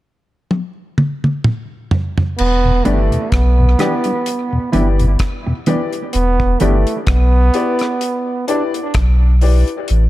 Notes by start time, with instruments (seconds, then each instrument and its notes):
0.51 high tom
0.98 mid tom
1.24 mid tom
1.44 mid tom
1.91 floor tom
2.18 floor tom
2.38 sub bass E1, trombone B3, crash
2.65 tonewheel organ E2 B2
2.85 sub bass G1, clean electric guitar E3 B3 D4 G4, tonewheel organ E3 G3 D4, trombone A3, upright piano E4 G4 B4 D5, closed hi-hat
3.12 tonewheel organ E2 B2, closed hi-hat
3.32 sub bass B1, trombone B3, kick, cross-stick, closed hi-hat
3.59 tonewheel organ E2 B2
3.79 clean electric guitar E3 B3 D4 G4, tonewheel organ E3 G3 D4, upright piano E4 G4 B4 D5, cross-stick, closed hi-hat
4.04 tonewheel organ G3 D4, closed hi-hat
4.26 closed hi-hat
4.53 tonewheel organ E2 B2
4.72 sub bass G1, clean electric guitar E3 B3 D4 G4, tonewheel organ E3 G3 D4, trombone E4, upright piano E4 G4 B4 D5, closed hi-hat
4.99 tonewheel organ E2 B2, closed hi-hat
5.19 kick, cross-stick, closed hi-hat
5.46 tonewheel organ E2 B2, muted clean electric guitar stroke
5.66 clean electric guitar E3 B3 D4 G4, tonewheel organ E3 G3 D4, upright piano E4 G4 B4 D5, closed hi-hat
5.93 closed hi-hat
6.13 sub bass E1, trombone B3, closed hi-hat
6.40 kick
6.60 sub bass G1, clean electric guitar E3 B3 D4 G4, trombone A3, upright piano E4 G4 B4 D5, closed hi-hat
6.87 closed hi-hat
7.07 sub bass B1, trombone B3, kick, cross-stick, closed hi-hat
7.54 upright piano E4 G4 B4 D5, closed hi-hat
7.79 cross-stick, closed hi-hat
8.01 closed hi-hat
8.48 trombone D4, upright piano E4 G4 B4 D5, closed hi-hat
8.74 upright piano B4 D5, closed hi-hat
8.94 sub bass B1, kick, cross-stick, closed hi-hat
9.41 upright piano E4 G4 B4 D5, open hi-hat
9.67 closed hi-hat
9.88 sub bass A1, closed hi-hat